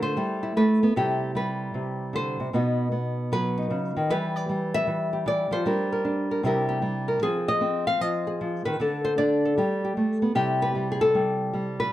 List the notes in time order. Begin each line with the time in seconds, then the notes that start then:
Already playing: D3 A3 C4 F4
0.02 C5
0.16 G3 E4
0.43 E4
0.56 A3 B4
0.83 B3
0.96 C3 G3 E4 G4
1.35 G3 B4
1.74 C3
2.13 D3 C5
2.40 C3
2.53 B2 B3 D#4 F#4
2.92 B3
3.32 F#3 B4
3.58 D#4
3.70 C#3
3.97 D#3
4.10 E3 G3 G4 B4
4.36 D5
4.49 G3
4.74 E5
4.87 E3
5.13 G4
5.26 E3 D5
5.51 F3 C5
5.66 G3 D4 A#4
5.92 A#4
6.05 D4
6.31 A#4
6.43 C3 G3 E4 G4 A#4
6.69 G4
6.82 G3
7.08 A#4
7.22 F3 C4 G#4
7.48 D#5
7.61 C4
7.87 F5
8.01 F3 D#5
8.27 G#4
8.41 F3
8.65 D#3 B4
8.80 D3 D4 A4
9.05 C5
9.18 D4 D5
9.45 A4
9.58 G3 G4
9.85 G4
9.97 A3
10.22 B3
10.35 C3 G3 E4 G4
10.62 B4
10.75 G3
10.92 G#4
11.01 A4
11.15 G3
11.53 G3
11.80 B4